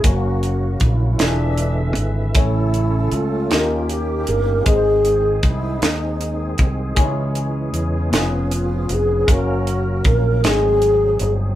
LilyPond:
<<
  \new Staff \with { instrumentName = "Alto flute" } { \time 6/8 \key cis \minor \tempo 4. = 52 fis'4 e'8 d'4 r8 | e'4 eis'4 g'8 ais'8 | gis'4 e'8 dis'4 r8 | r4. cis'8 eis'8 gis'8 |
fis'4 ais'8 gis'4 r8 | }
  \new Staff \with { instrumentName = "Upright piano" } { \time 6/8 \key cis \minor <ais cis' fis' ais' cis''>4. <d' e' f' g' gis' b'>4. | <a cis' a' cis'' e''>4. <ais cis' dis' g' gis' ais'>4. | <gis bis gis' b' bis' dis''>2. | <gis cis' dis' e' gis' cis''>4. <b cis' dis' eis' gis' b'>4. |
<ais cis' fis' ais' cis''>4. <a bis dis' fis' gis'>4. | }
  \new Staff \with { instrumentName = "Upright piano" } { \clef bass \time 6/8 \key cis \minor r4. e4. | a,4. dis4. | gis,4. r4. | cis4. r4. |
r4. gis4. | }
  \new Staff \with { instrumentName = "Tonewheel organ" } { \time 6/8 \key cis \minor << { fis'4. e''4. | a'4. g'4. | gis'2.~ | gis'2. |
ais'4. gis'4. | } \\ { ais4. gis4. | cis'2. | bis2. | cis'4. cis'4.~ |
cis'4. bis4. | } >> }
  \new Staff \with { instrumentName = "Tonewheel organ" } { \clef bass \time 6/8 \key cis \minor << { fis4. e4. | a4. ais4. | gis2.~ | gis4. b4. |
ais4. r4. | } \\ { cis4. d4. | cis4. dis4.~ | dis2. | e4. eis4. |
fis2. | } >> }
  \new Staff \with { instrumentName = "Fingered electric bass" } { \clef bass \time 6/8 \key cis \minor fis,,4 ais,,8 e,,4 gis,,8 | a,,4 cis,8 dis,4 g,,8 | gis,,4 bis,,8 dis,4 bis,,8 | cis,4 e,8 eis,,4 eis,,8 |
fis,,4 ais,,8 gis,,4 g,,8 | }
  \new DrumStaff \with { instrumentName = "Drums" } \drummode { \time 6/8 <hh bd>8 hh8 <hh bd>8 <hh sn>8 hh8 hh8 | <hh bd>8 hh8 hh8 <hh sn>8 hh8 hh8 | <hh bd>8 hh8 <hh bd>8 <hh sn>8 hh8 <hh bd>8 | <hh bd>8 hh8 hh8 <hh sn>8 hh8 hh8 |
<hh bd>8 hh8 <hh bd>8 <hh sn>8 hh8 hh8 | }
>>